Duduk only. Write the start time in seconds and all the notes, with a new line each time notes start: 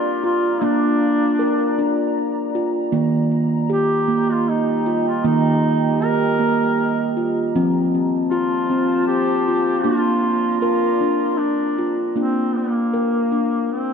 Already playing: F4
0.25 F4
0.63 D4
3.73 G4
4.32 F4
4.50 D#4
5.08 F4
5.26 D#4
6.03 A#4
8.30 F4
9.07 G4
9.83 F4
10.61 F4
11.38 D4
12.16 C4
12.57 A#3
13.72 C4